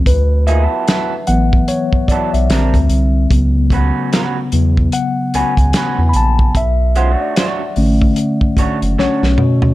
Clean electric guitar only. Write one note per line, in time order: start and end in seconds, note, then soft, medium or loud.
0.47 0.63 F3 medium
0.47 0.63 A#3 medium
0.47 0.63 D#4 medium
0.47 0.64 G#4 medium
0.63 0.85 F#3 medium
0.63 0.85 B3 medium
0.63 0.85 E4 medium
0.63 0.86 A4 medium
0.89 1.12 F#3 medium
0.89 1.12 B3 medium
0.89 1.13 E4 medium
0.89 1.13 A4 medium
2.11 2.29 F#3 medium
2.11 2.29 B3 medium
2.11 2.29 E4 medium
2.11 2.29 A4 medium
2.51 2.74 G3 medium
2.51 2.74 C4 medium
2.51 2.75 D4 medium
2.51 2.75 A#4 medium
3.72 4.09 A3 medium
3.72 4.10 C#4 medium
3.72 4.10 F#4 medium
3.72 4.10 B4 medium
4.13 4.36 A3 medium
4.13 4.36 C#4 medium
4.13 4.37 F#4 medium
4.13 4.37 B4 medium
5.35 5.53 A3 medium
5.35 5.53 C#4 medium
5.35 5.53 F#4 medium
5.35 5.53 B4 medium
5.76 5.99 A3 medium
5.76 5.99 C#4 medium
5.76 5.99 F#4 medium
5.76 5.99 B4 medium
6.96 7.12 G#3 medium
6.96 7.11 C#4 medium
6.96 7.12 F4 medium
6.96 7.12 C5 medium
7.11 7.33 A3 medium
7.11 7.34 D4 medium
7.11 7.34 F#4 medium
7.11 7.34 C#5 medium
7.36 7.60 A3 medium
7.36 7.60 D4 medium
7.36 7.60 F#4 medium
7.36 7.61 C#5 medium
8.58 8.77 A3 medium
8.58 8.77 D4 medium
8.58 8.77 F#4 medium
8.58 8.77 C#5 medium
8.99 9.22 A3 medium
8.99 9.23 D4 medium
8.99 9.23 F#4 medium
8.99 9.23 C#5 loud